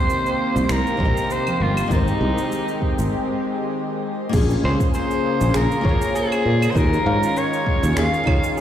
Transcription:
Already playing: C3 D#3 A#3 C4 G4 A#4 C5 D#5
0.10 cabasa
0.26 cabasa
0.56 C2, high conga, cabasa
0.69 C2 A#4, finger snap, cabasa
0.87 cabasa
0.97 A#1 C3 C4 G4, kick, high conga
1.03 A#4 D#5
1.17 cabasa
1.30 C5, cabasa
1.47 low conga, cabasa, claves
1.60 G1 F4, high conga
1.77 cabasa, claves
1.88 G#1 G#3 C4 D#4 G4, kick, cabasa
1.93 D#4 A#4 C5
2.07 cabasa
2.21 C2, high conga
2.38 cabasa
2.52 cabasa
2.68 cabasa
2.82 kick
2.99 G#1, high conga, cabasa
4.29 C#3 A#3 F4 G#4, kick, crash, cabasa
4.33 A#1 C#4 C5
4.50 cabasa
4.64 C#2 C5
4.80 kick, cabasa
4.94 C5, cabasa
5.11 cabasa
5.41 A#1, cabasa
5.54 A#1 G#4 A#4, finger snap, cabasa
5.71 cabasa
5.81 G#1 A#3 F4 G#4 C#5, kick
5.87 C5 C#5
6.02 cabasa
6.15 G#4, cabasa
6.32 cabasa, claves
6.46 A#2
6.62 cabasa, claves
6.70 D#3 C5
6.75 D#2 D#3 G#3 C#4 D#4 F4 G#4 A#4, kick, cabasa
6.80 C#5
6.93 cabasa
7.06 G#2 F5
7.23 cabasa
7.37 C#5, cabasa
7.53 cabasa
7.67 kick
7.83 D#2, cabasa
7.97 D#2 G#4 F5, finger snap, cabasa
8.14 cabasa
8.24 C#2 D#3 D#4 C#5, kick, claves
8.28 F4 G#4 C#5
8.44 cabasa
8.57 G#4, cabasa

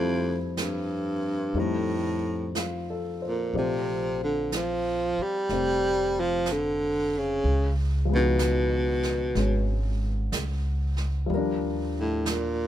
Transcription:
Already playing: F2 G3 A3 C4 E4
0.57 G2, brush sweep, snare, hi-hat pedal
1.54 F2 G3 A3 C4 D#4, brush sweep
1.60 A2
2.55 F4, brush sweep, snare, hi-hat pedal
2.90 A4
3.22 C5
3.28 A#2
3.53 A#1 F3 A3 C4 D5, brush sweep
3.58 C3
4.24 D3
4.52 F3, brush sweep, snare, hi-hat pedal
5.19 G3, muted upright bass stroke
5.49 F1 A3 C4, brush sweep, snare
6.20 F3
6.46 brush sweep, snare, hi-hat pedal
6.52 D3
7.19 C#3
7.43 C#2, brush sweep
8.05 F3 G#3
8.12 B2 B3 D#4
8.39 brush sweep, snare, hi-hat pedal
9.03 snare
9.35 G#1 G#3 C#4, brush sweep, snare
10.32 C#2, brush sweep, snare, hi-hat pedal
10.97 snare
11.26 D#2 F3 G3, brush sweep
11.34 D4 A#4
12.00 A2
12.26 brush sweep, snare, hi-hat pedal
12.30 A#2

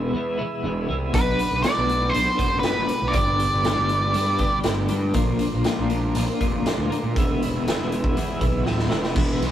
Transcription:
Already playing: E2 B2 E3 G#3 B3 E4 G#4 E5 B5 E6
0.13 E2 E3 G#3 B3 E4
0.38 E2 B2 E3 G#3 B3 E4
0.63 E1 E3 G#3 B3 E4
0.88 C2 G#3 B3 E4
0.93 E3
1.13 B1 B2 F#3 B3 D4 F#4 A4 B4 F#5 B5 D6, kick, closed hi-hat
1.17 B4
1.38 B3 D4 F#4 B4, closed hi-hat
1.52 B1
1.63 B2 F#3 B3 D4 F#4 D5, snare, closed hi-hat
1.67 B4
1.77 B1, snare
1.88 B3 D4 F#4 B4, closed hi-hat
2.09 B3 C5
2.14 B1 D4 F#4 B4, closed hi-hat
2.37 F#1 B2 F#3 B3 D4 F#4 B4, kick, closed hi-hat
2.59 B3 D4 B4, closed hi-hat
2.64 F#4 B4, snare
2.77 E1
2.87 B3 D4 F#4 B4, closed hi-hat
3.02 B1
3.08 D5
3.13 G1 G2 D3 G3 B3 D4 G4 G5 D6, kick, closed hi-hat
3.39 G3 B3 D4 G4, closed hi-hat
3.53 G1
3.64 G2 D3 G3 B3 D4 G4, snare, closed hi-hat
3.78 G1
3.89 G3 B3 D4 G4, closed hi-hat
4.13 G2 G3 B3 D4 G4, closed hi-hat
4.39 G2 D3 G3 B3 D4 G4, kick, closed hi-hat
4.64 G1 G3 B3 D4 G4, snare, closed hi-hat
4.88 G2 G3 B3 D4 G4, closed hi-hat
5.13 A#1 A#2 F3 A#3 D4 F4 A#4 F5 C6 D6, kick, closed hi-hat
5.39 A#3 D4 F4 A#4, closed hi-hat
5.54 A#1
5.64 A#2 F3 A#3 D4 F4 A#4, snare, closed hi-hat
5.79 A#1
5.90 A#3 D4 F4 A#4, closed hi-hat
6.15 A#1 A#3 D4 F4 A#4, closed hi-hat
6.40 F1 A#2 F3 A#3 D4 F4 A#4, kick, closed hi-hat
6.66 A#3 D4 F4 A#4, snare, closed hi-hat
6.78 D2
6.90 A#3 D4 F4 A#4, closed hi-hat
7.04 A#2
7.15 E1 E2 B2 E3 G#3 G#4 E5 B5 E6, kick, closed hi-hat
7.19 B3 E4
7.42 E3 G#3 B3 E4, closed hi-hat
7.54 E1
7.66 E2 B2 E3 G#3 B3 E4, snare, closed hi-hat
7.80 E1, snare
7.91 E3 G#3 B3 E4, closed hi-hat
8.04 kick
8.15 E2 E3 G#3 B3 E4, closed hi-hat
8.41 B1 E2 B2 E3 G#3 B3 E4, kick, closed hi-hat
8.64 D1 E3 G#3 B3 E4, snare
8.79 snare
8.89 E1 E3 G#3 B3 E4, snare
9.04 snare
9.14 E1 E2 B2 E3 G#3 B3 G#4 B4 E5 B5, kick, crash
9.19 E4
9.41 B1, snare, ride

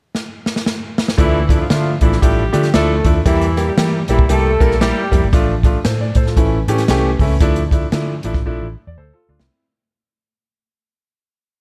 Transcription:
0.15 snare
0.46 snare
0.56 snare
0.66 snare
0.98 snare
1.08 snare
1.17 D2 E3 F3 A3 D4 E4, kick, closed hi-hat
1.49 F3 A3 D4 E4, kick, closed hi-hat
1.60 F3 F4
1.69 D3 F3 A3 D4 E4 F4, snare, closed hi-hat
2.01 A1 E3 F3 A3 D4 E4, kick, closed hi-hat
2.12 snare
2.22 A1 F3 G3 A3 D4 E4 G4, kick, closed hi-hat
2.53 D3 F3 A3 D4 G4, closed hi-hat
2.63 snare, closed hi-hat
2.74 D2 F3 A3 D4 E4 A4, snare, closed hi-hat
3.05 D#2 F3 A3 D4 E4, kick, closed hi-hat
3.25 E2 E3 G3 A#3 E4 G4, kick, closed hi-hat
3.41 closed hi-hat
3.57 G3 A#3 E4 G4, closed hi-hat
3.67 G3 G4
3.77 E3 G3 A#3 E4 G4, snare, closed hi-hat
4.08 A#1 E3 G3 A#3 E4 G4, closed hi-hat
4.19 kick
4.29 C2 G3 A3 A#3 E4 G4 A4, closed hi-hat
4.60 A#1 G3 A#3 E4 A#4, kick, closed hi-hat
4.71 snare
4.81 G3 A#3 E4 G4, snare, closed hi-hat
5.11 F2 G3 A#3 E4 G4, kick, closed hi-hat
5.23 G#1
5.33 A1 F3 A3 D4 F4, kick, closed hi-hat
5.63 F3 A3 D4 F4, kick, closed hi-hat
5.84 A2 A4 C5, snare, closed hi-hat
6.01 D5
6.15 A2 A4 C5, kick, closed hi-hat
6.26 F4 A4, snare
6.36 A1 E3 A3 C#4 E4, kick, closed hi-hat
6.68 A2 E3 A3 C#4 G4, closed hi-hat
6.78 snare, closed hi-hat
6.88 C2 E3 A3 C#4 G4, snare, closed hi-hat
7.19 C#2 E3 A3 C#4 E4, kick, open hi-hat
7.40 D2 F3 A3 D4 E4, kick, closed hi-hat
7.56 closed hi-hat
7.71 F3 A3 D4 E4, kick, closed hi-hat
7.92 D3 F3 A3 D4 E4, snare, closed hi-hat
8.23 A1 F3 A3 D4 E4, closed hi-hat
8.34 kick, snare
8.45 A#1 F3 A3 D4 E4
8.61 A1
8.87 E2 D5
8.97 D2 A4 C5
9.13 F4 A4
9.29 D2 D4 F4
9.39 C2 C4 E4, snare

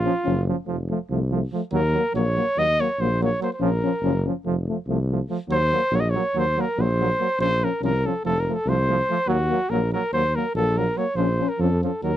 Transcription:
Already playing: F4
0.04 F3 C#4
0.25 F#1 F3 C#4
0.48 F3 C#4
0.66 F1 F3 A3
0.90 F3 A3
1.10 C2 F3 A3
1.31 F3 A3
1.53 F3 A3
1.71 D#2 F#3 A#3 A#4
1.93 F#3 A#3
2.13 A#1 F#3 A#3 C#5
2.36 F#3 A#3
2.57 D#2 F#3 A#3 D#5
2.80 F#3 A#3 C#5
2.99 A#1 F#3 A#3 C5
3.21 F#3 A#3 C#5
3.40 F#3 A#3 C5
3.53 C5
3.60 A#1 F3 C#4 A#4
3.84 F3 C#4
4.02 F#1 F3 C#4
4.25 F3 C#4
4.45 F1 F3 A3
4.68 F3 A3
4.87 C2 F3 A3
5.11 F3 A3
5.29 F3 A3
5.48 D#2 F#3 A#3 C5
5.72 F#3 A#3
5.91 A#1 F#3 A#3
5.95 C#5
6.00 D#5
6.10 C#5
6.14 F#3 A#3
6.34 D#2 F#3 A#3
6.39 C5
6.57 F#3 A#3 A#4
6.77 A#1 F#3 A#3 C5
7.00 F#3 A#3
7.19 F#3 A#3
7.39 A#1 F3 C#4 C5
7.61 F3 C#4 A#4
7.81 C2 F3 C#4 A#4
8.04 F3 C#4 A4
8.25 F1 F3 A3 A4
8.40 A#4
8.48 F3 A3
8.54 A4
8.66 C2 F3 A3 C5
8.88 F3 A3
9.09 F3 A3
9.27 D#2 F#3 A#3 F#4
9.49 F#3 A#3
9.70 A#1 F#3 A#3 A#4
9.93 F#3 A#3 A#4
10.12 D#2 F#3 A#3 C5
10.35 F#3 A#3 A#4
10.54 A#1 F#3 A#3 A4
10.76 F#3 A#3 A#4
10.96 F#3 A#3 C#5
11.15 A#1 F3 C#4 C5
11.38 F3 C#4
11.49 A#4
11.58 F2 F3 C#4 A4
11.82 F3 C#4 A4
12.03 D#2 F#3 D#4 A#4

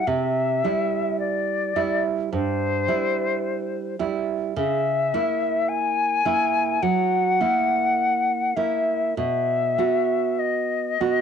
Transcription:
0.07 C3 E5
0.64 G3 E4
1.19 D5
1.76 G3 E4
2.32 G2 C5
2.88 G3 E4
4.00 G3 E4
4.57 C#3 E5
5.14 A#3 E4
5.68 G#5
6.25 A#3 E4
6.82 F#3 F#5
7.40 A#3 E4
8.56 A#3 E4 E5
9.17 B2 E5
9.78 B3 F#4
10.39 D#5
11.01 B3 F#4

